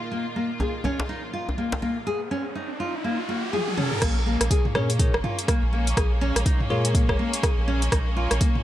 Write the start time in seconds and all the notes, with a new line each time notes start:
Already playing: A#2 D#3 A#3 F4
0.11 A#3, riser
0.36 A#3
0.60 G#4, djembe tone
0.84 C#4, djembe tone
1.00 djembe slap
1.09 D#4
1.33 F4
1.49 djembe tone
1.58 A#3
1.72 djembe slap
1.82 A#3, djembe tone
2.07 G#4
2.31 C#4
2.55 D#4
2.80 F4
3.04 A#3
3.29 A#3
3.53 G#4, high tom
3.68 high tom
3.77 C#4, mid tom
3.92 mid tom
4.02 A#1 G#3 A#3 C#4, kick, cross-stick, closed hi-hat, crash
4.26 A#3
4.40 A#1, cross-stick, closed hi-hat
4.51 G#4, kick, closed hi-hat
4.65 mid tom
4.75 A#2 C#4 G#4 A#4 C#5, cross-stick, mid tom
4.90 closed hi-hat
4.99 D#4 G#4 A#4 C#5, kick, closed hi-hat
5.14 G#1, cross-stick
5.24 F4, mid tom
5.39 closed hi-hat
5.48 A#3, kick, cross-stick, closed hi-hat
5.62 A#1
5.73 A#3
5.87 closed hi-hat
5.97 A#1 G#4, kick, cross-stick, closed hi-hat
6.21 C#4
6.35 A#1, cross-stick, closed hi-hat
6.46 D#4, kick, closed hi-hat
6.60 mid tom
6.70 A#2 F4 G#4 A#4 C#5
6.85 closed hi-hat
6.95 A#3, kick, closed hi-hat
7.09 G#1 G#4 A#4 C#5, kick, cross-stick
7.19 A#3
7.33 closed hi-hat
7.43 G#4, kick, cross-stick, closed hi-hat
7.58 A#1
7.68 C#4
7.82 closed hi-hat
7.92 A#1 D#4, kick, cross-stick, closed hi-hat
8.17 F4
8.31 A#1, cross-stick, closed hi-hat
8.41 A#3, kick, closed hi-hat
8.55 mid tom